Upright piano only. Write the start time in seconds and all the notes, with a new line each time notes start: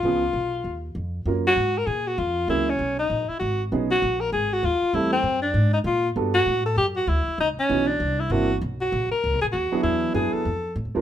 0.05 F3 B3 C#4 G#4
1.27 F#3 A#3 C#4 F4 A#4
2.49 F#3 A#3 C#4 E4 G#4
3.72 F#3 B3 C#4 D#4 G#4
4.94 G3 A3 C4 E4 A4
6.16 G3 B3 D4 F#4 A4
7.69 E3 B3 C#4 D#4 F#4
8.31 E3 A#3 C4 D4 E4
9.72 F#3 B3 D4 E4 G#4
10.14 F#3 B3 D4 E4 G#4
10.95 G3 C4 D4 F4 A#4